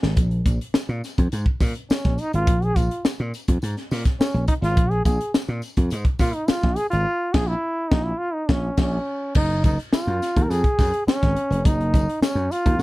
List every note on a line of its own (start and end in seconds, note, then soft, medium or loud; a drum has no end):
0.03 0.17 G#1 medium
0.03 snare medium
0.16 0.41 A#1 loud
0.16 kick loud
0.16 closed hi-hat medium
0.16 tambourine soft
0.31 closed hi-hat soft
0.45 0.58 A#1 medium
0.45 kick loud
0.45 closed hi-hat medium
0.45 tambourine medium
0.61 closed hi-hat medium
0.74 muted slap bass stroke soft
0.74 snare loud
0.74 tambourine loud
0.89 1.01 A#2 medium
0.89 closed hi-hat soft
1.04 snare soft
1.04 closed hi-hat medium
1.04 tambourine medium
1.18 1.30 F2 medium
1.18 kick medium
1.18 closed hi-hat medium
1.32 1.44 G#2 loud
1.32 closed hi-hat medium
1.32 tambourine medium
1.46 kick medium
1.60 1.73 A#2 medium
1.60 kick loud
1.60 snare soft
1.60 open hi-hat medium
1.60 tambourine medium
1.75 closed hi-hat medium
1.90 2.22 C#4 medium
1.90 muted slap bass stroke soft
1.90 snare loud
1.90 tambourine medium
2.04 2.16 A#1 loud
2.04 kick loud
2.04 snare soft
2.04 closed hi-hat soft
2.18 2.34 D#4 medium
2.18 closed hi-hat medium
2.18 tambourine soft
2.33 2.47 G#1 loud
2.33 2.66 F4 loud
2.33 closed hi-hat medium
2.47 2.71 A#1 loud
2.47 kick loud
2.47 closed hi-hat medium
2.62 2.78 G#4 loud
2.62 closed hi-hat soft
2.76 2.88 A#1 loud
2.76 3.05 F4 medium
2.76 kick medium
2.76 closed hi-hat medium
2.76 tambourine medium
2.91 closed hi-hat medium
3.05 muted slap bass stroke soft
3.05 snare loud
3.05 tambourine loud
3.19 3.31 A#2 medium
3.19 closed hi-hat soft
3.34 closed hi-hat medium
3.34 tambourine medium
3.48 3.60 F2 medium
3.48 kick medium
3.48 closed hi-hat medium
3.62 3.74 G#2 loud
3.62 closed hi-hat medium
3.62 tambourine medium
3.77 snare soft
3.77 closed hi-hat soft
3.91 4.03 A#2 loud
3.91 snare soft
3.91 open hi-hat medium
3.91 tambourine medium
4.05 kick medium
4.05 snare soft
4.05 closed hi-hat medium
4.20 4.46 C#4 medium
4.20 muted slap bass stroke soft
4.20 snare loud
4.20 tambourine medium
4.34 4.46 A#1 loud
4.34 closed hi-hat soft
4.48 4.54 D#4 medium
4.48 kick medium
4.48 closed hi-hat medium
4.62 4.77 G#1 loud
4.62 4.92 F4 loud
4.62 snare soft
4.62 closed hi-hat medium
4.77 5.01 A#1 loud
4.77 kick loud
4.77 closed hi-hat medium
4.91 5.05 G#4 loud
4.91 closed hi-hat soft
5.05 5.17 A#1 loud
5.05 5.32 G#4 medium
5.05 kick loud
5.05 closed hi-hat medium
5.05 tambourine medium
5.21 closed hi-hat medium
5.34 muted slap bass stroke soft
5.34 snare loud
5.34 tambourine loud
5.48 5.60 A#2 medium
5.48 closed hi-hat soft
5.62 closed hi-hat medium
5.62 tambourine medium
5.77 5.89 F2 medium
5.77 kick medium
5.77 closed hi-hat medium
5.90 6.04 G#2 loud
5.90 closed hi-hat medium
5.90 tambourine medium
6.05 kick medium
6.05 closed hi-hat soft
6.19 6.32 A#2 loud
6.19 6.37 F4 loud
6.19 kick medium
6.19 snare soft
6.19 open hi-hat medium
6.19 tambourine medium
6.33 6.50 D#4 medium
6.33 closed hi-hat medium
6.48 6.78 F4 loud
6.48 muted slap bass stroke soft
6.48 snare loud
6.48 tambourine loud
6.62 6.75 A#1 loud
6.62 kick loud
6.62 snare soft
6.62 closed hi-hat soft
6.76 6.90 G#4 loud
6.76 closed hi-hat medium
6.76 tambourine soft
6.90 7.04 G#1 medium
6.90 7.36 F4 loud
6.90 closed hi-hat medium
7.34 7.54 A#1 medium
7.34 7.49 G#4 loud
7.34 kick loud
7.34 snare loud
7.34 crash medium
7.48 7.91 E4 loud
7.90 8.11 A#1 loud
7.90 8.05 D#4 medium
7.90 kick loud
7.90 snare loud
8.04 8.19 E4 medium
8.18 8.35 F4 loud
8.34 8.51 D#4 medium
8.49 8.69 A#1 loud
8.49 8.78 C#4 medium
8.49 kick loud
8.49 snare loud
8.77 8.97 A#1 loud
8.77 kick loud
8.77 snare loud
8.77 crash medium
8.82 9.33 C#4 medium
9.35 9.59 F#1 loud
9.35 9.63 D#4 loud
9.35 kick loud
9.35 crash loud
9.50 closed hi-hat soft
9.64 9.76 F#1 medium
9.64 9.78 D#4 medium
9.64 kick loud
9.64 closed hi-hat medium
9.64 tambourine medium
9.79 closed hi-hat medium
9.93 10.44 F4 medium
9.93 muted slap bass stroke soft
9.93 snare loud
9.93 tambourine loud
10.07 10.19 F#2 medium
10.07 closed hi-hat soft
10.22 snare soft
10.22 closed hi-hat medium
10.22 tambourine medium
10.36 10.48 D#2 medium
10.36 kick medium
10.36 closed hi-hat medium
10.43 10.52 A#4 medium
10.50 10.62 F2 loud
10.50 11.07 G#4 loud
10.50 closed hi-hat medium
10.50 tambourine medium
10.64 kick medium
10.64 closed hi-hat soft
10.79 10.91 F#2 medium
10.79 kick loud
10.79 snare soft
10.79 open hi-hat medium
10.79 tambourine medium
10.94 closed hi-hat medium
11.07 11.67 C#4 medium
11.07 muted slap bass stroke soft
11.07 snare loud
11.07 tambourine medium
11.22 11.34 G#1 loud
11.22 kick medium
11.22 snare soft
11.22 closed hi-hat soft
11.36 closed hi-hat medium
11.50 11.62 F1 medium
11.50 closed hi-hat medium
11.65 11.89 F#1 loud
11.65 12.22 D#4 loud
11.65 kick loud
11.65 closed hi-hat medium
11.65 tambourine soft
11.81 closed hi-hat soft
11.94 12.06 F#1 medium
11.94 kick loud
11.94 closed hi-hat medium
11.94 tambourine medium
12.09 closed hi-hat medium
12.21 12.53 C#4 medium
12.21 muted slap bass stroke soft
12.21 snare loud
12.21 tambourine loud
12.35 12.48 F#2 medium
12.35 closed hi-hat soft
12.51 12.82 F4 loud
12.51 closed hi-hat medium
12.51 tambourine medium
12.66 12.77 D#2 medium
12.66 kick medium
12.66 closed hi-hat medium
12.79 12.83 F2 loud
12.79 tambourine medium